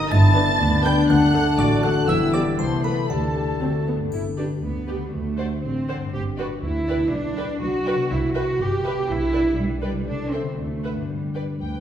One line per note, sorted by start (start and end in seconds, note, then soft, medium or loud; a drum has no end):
0.00 0.10 G2 medium
0.00 0.13 D#3 soft
0.00 1.11 G3 soft
0.00 0.11 D#4 medium
0.00 0.13 D#4 soft
0.00 0.76 G4 medium
0.00 0.13 A#4 medium
0.00 0.13 D#5 medium
0.00 0.14 D#5 medium
0.10 0.50 G1 medium
0.10 1.12 G2 medium
0.10 0.50 G2 medium
0.10 1.06 B3 medium
0.10 2.10 D4 medium
0.10 2.05 D4 medium
0.10 0.59 E4 medium
0.10 0.83 A5 medium
0.10 0.85 A5 medium
0.10 1.05 B5 medium
0.10 0.85 A6 loud
0.10 0.81 A6 medium
0.28 1.08 D3 medium
0.35 0.54 D4 medium
0.35 0.54 B4 medium
0.44 2.11 D4 soft
0.60 0.99 D2 medium
0.60 1.08 D4 medium
0.60 0.92 B4 medium
0.77 1.12 G4 medium
0.84 1.03 D4 medium
0.84 1.03 B4 medium
0.84 1.09 G5 medium
0.84 0.97 G5 medium
0.84 1.09 G6 medium
0.84 1.08 G6 medium
0.93 1.12 B4 soft
1.08 1.48 D2 medium
1.08 2.11 D3 medium
1.08 2.08 A3 medium
1.08 1.58 D4 medium
1.08 1.58 F#5 medium
1.08 1.62 F#5 medium
1.08 2.09 A5 medium
1.08 1.57 F#6 medium
1.08 1.56 F#6 medium
1.26 2.11 A3 medium
1.34 1.52 D4 medium
1.34 1.52 A4 medium
1.42 1.74 D5 soft
1.58 1.98 A1 medium
1.58 1.98 A2 medium
1.58 2.10 F#4 medium
1.58 1.91 A4 medium
1.58 1.84 D5 medium
1.58 1.83 D6 medium
1.58 1.82 D6 medium
1.75 2.11 D5 medium
1.83 2.02 D4 medium
1.83 2.02 A4 medium
1.83 1.92 F#5 medium
1.83 2.11 F#5 medium
1.83 2.08 F#6 medium
1.83 2.07 F#6 medium
1.92 2.11 A4 soft
2.07 2.48 E1 medium
2.07 2.48 E2 medium
2.07 2.61 E3 medium
2.07 2.58 G3 medium
2.07 3.09 B3 medium
2.07 2.93 E4 medium
2.07 3.08 E4 soft
2.07 2.16 E5 medium
2.07 2.36 E5 medium
2.07 2.58 G5 medium
2.07 2.33 E6 medium
2.07 2.32 E6 medium
2.25 2.61 G3 soft
2.33 2.52 B3 soft
2.33 2.52 G4 soft
2.33 2.42 D5 medium
2.33 2.59 D5 medium
2.33 2.41 D6 medium
2.33 2.57 D6 medium
2.43 2.61 B4 soft
2.58 2.99 C2 medium
2.58 2.99 C2 soft
2.58 3.12 C3 soft
2.58 3.86 A3 soft
2.58 2.67 C5 soft
2.58 2.84 C5 soft
2.58 3.87 A5 soft
2.58 2.83 C6 medium
2.58 2.82 C6 medium
2.76 3.26 A3 soft
2.84 3.04 A3 soft
2.84 3.03 A4 soft
2.84 3.09 B4 soft
2.84 2.96 B4 soft
2.84 3.09 B5 medium
2.84 3.08 B5 soft
2.93 3.12 E4 soft
2.93 3.43 A4 soft
3.09 3.50 D2 soft
3.09 3.60 D3 soft
3.09 3.85 D4 soft
3.09 3.61 G4 soft
3.09 3.60 G4 soft
3.09 3.85 A4 soft
3.09 3.86 A4 soft
3.09 3.87 A5 soft
3.09 3.83 A5 soft
3.27 3.77 A3 soft
3.35 3.54 A3 soft
3.35 3.54 G4 soft
3.43 3.63 G4 soft
3.43 3.95 A4 soft
3.60 4.01 D2 soft
3.60 4.02 D2 soft
3.60 4.14 D3 soft
3.60 4.09 A3 soft
3.60 3.69 C4 soft
3.60 3.86 F#4 soft
3.78 4.14 A3 soft
3.87 3.95 B3 soft
3.94 5.06 G2 soft
3.94 4.14 F#4 soft
3.94 4.15 A4 soft
3.99 5.08 B3 soft
4.03 5.03 D4 soft
4.08 5.12 G4 soft
4.12 4.52 G1 soft
4.12 4.21 E4 medium
4.12 triangle soft
4.37 4.46 D4 soft
4.37 4.46 G4 soft
4.37 4.46 B4 soft
4.37 4.45 D5 soft
4.62 5.02 D2 soft
4.62 5.12 B3 soft
4.88 4.96 G4 soft
4.88 4.96 B4 soft
4.88 4.96 D5 soft
4.95 6.06 D3 soft
5.00 6.08 C4 soft
5.04 6.03 D4 soft
5.09 6.13 F#4 soft
5.13 5.52 D2 soft
5.13 5.62 A3 medium
5.38 5.46 C5 soft
5.38 5.46 D5 soft
5.38 5.46 F#5 soft
5.63 6.03 A1 medium
5.63 6.12 C4 medium
5.88 5.96 C5 soft
5.88 5.97 D5 soft
5.88 5.96 F#5 soft
5.96 7.06 G2 soft
6.00 6.98 B3 soft
6.05 7.02 D4 soft
6.09 7.07 G4 soft
6.13 6.53 G1 medium
6.13 6.21 G4 medium
6.38 6.47 F#4 medium
6.38 6.47 B4 soft
6.38 6.46 D5 soft
6.38 6.46 G5 soft
6.63 7.02 D2 medium
6.63 7.11 E4 medium
6.88 6.96 B4 soft
6.88 6.95 D5 soft
6.88 6.96 G5 soft
6.94 8.04 B2 soft
6.99 7.96 B3 soft
7.04 8.08 D4 soft
7.08 8.05 G4 soft
7.12 7.51 B1 medium
7.12 7.61 D4 medium
7.37 7.45 B4 soft
7.37 7.45 D5 soft
7.37 7.45 G5 soft
7.61 8.00 B1 medium
7.61 8.10 F#4 medium
7.85 7.95 B4 soft
7.85 7.94 D5 soft
7.85 7.93 G5 soft
7.93 9.02 C3 soft
7.97 8.94 B3 soft
8.02 9.07 E4 soft
8.06 9.04 G4 soft
8.10 8.49 C2 medium
8.10 8.35 E4 medium
8.35 8.59 F#4 medium
8.35 8.43 B4 soft
8.35 8.43 E5 soft
8.35 8.43 G5 soft
8.59 8.98 G1 medium
8.59 9.09 G4 medium
8.84 8.93 B4 soft
8.84 8.92 E5 soft
8.84 8.92 G5 soft
8.91 10.01 B2 soft
8.96 10.03 B3 soft
9.00 10.05 D4 soft
9.05 10.02 G4 soft
9.09 9.48 B1 medium
9.09 9.58 E4 medium
9.33 9.42 B4 soft
9.33 9.41 D5 soft
9.33 9.41 G5 soft
9.58 9.97 B1 medium
9.58 10.08 G3 medium
9.82 9.90 B4 soft
9.82 9.91 D5 soft
9.82 9.91 G5 soft
9.90 10.51 C3 soft
9.94 11.04 A3 soft
9.99 10.48 E4 soft
10.03 10.47 C2 medium
10.03 10.58 G4 soft
10.08 10.32 D4 medium
10.32 10.58 C4 medium
10.32 10.40 A4 soft
10.32 10.42 E5 soft
10.32 10.40 G5 soft
10.40 11.02 D3 soft
10.44 10.95 B3 soft
10.49 11.07 E4 soft
10.54 11.09 F#4 soft
10.58 10.98 D2 soft
10.58 11.08 A3 soft
10.84 10.92 B4 soft
10.84 10.93 E5 soft
10.84 10.92 F#5 soft
10.91 11.80 G2 soft
10.96 11.80 B3 soft
11.00 11.80 D4 soft
11.05 11.80 G4 soft
11.09 11.50 G2 soft
11.09 11.59 G3 soft
11.34 11.44 B4 soft
11.34 11.44 D5 soft
11.34 11.42 G5 soft
11.61 11.80 D2 soft
11.61 11.80 B4 soft
11.61 11.80 G5 soft